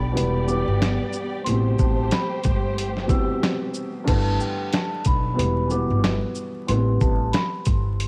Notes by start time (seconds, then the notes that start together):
Already playing: B1 G2 D3 E3 A3 B3 G4 D5 B5
0.12 B2 E3 G3 B3 D5
0.16 E1 G4, closed hi-hat
0.46 B2 E3 G3 B3 D6, shaker
0.68 G1
0.82 snare, closed hi-hat
1.13 shaker
1.45 A1 B2 E3 G3 A3 G4 C5 C6, closed hi-hat
1.49 B2 C3
1.79 A1 A5, kick, shaker
2.11 B5, snare, closed hi-hat
2.43 G1 C6, kick, closed hi-hat, shaker
2.78 closed hi-hat
2.97 snare
3.05 B2 E3 G3, kick
3.09 C3 E6, closed hi-hat, shaker
3.43 snare, closed hi-hat
3.74 shaker
4.04 G1 G2 D3 E3 A3 B3 A5, kick, closed hi-hat, crash
4.40 G5, shaker
4.73 A5, snare, closed hi-hat
5.05 B1 B5, kick, closed hi-hat, shaker
5.34 B2 E3 G3 B3
5.39 E1, closed hi-hat
5.68 B2 E3 G3 B3 D6, shaker
5.90 G1
6.04 snare, closed hi-hat
6.35 shaker
6.67 A1 B2 E3 G3 B3 C6, closed hi-hat
6.74 C3
7.01 A1 A5, kick, shaker
7.32 B5, snare, closed hi-hat
7.65 G1, kick, closed hi-hat, shaker
8.00 closed hi-hat